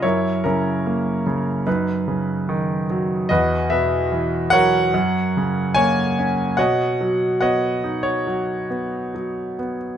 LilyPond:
<<
  \new Staff \with { instrumentName = "Grand piano" } { \time 4/4 \key b \major \tempo 4 = 73 << { cis''8 ais'4. b'4. r8 | dis''8 e''4 fis''4. gis''4 | fis''4 fis''8. cis''4.~ cis''16 r8 | } \\ { <e' ais'>8 <cis' e'>4. dis'2 | <fis' b'>8 b'4 <ais' cis''>4. cis''4 | <cis'' dis''>4 <cis'' dis''>8. fis'2 r16 | } >> }
  \new Staff \with { instrumentName = "Grand piano" } { \clef bass \time 4/4 \key b \major fis,8 cis8 ais8 cis8 fis,8 cis8 dis8 fis8 | e,8 b,8 e8 fis8 fis,8 cis8 ais8 cis'8 | b,8 fis8 b8 dis'8 fis8 b8 fis8 b8 | }
>>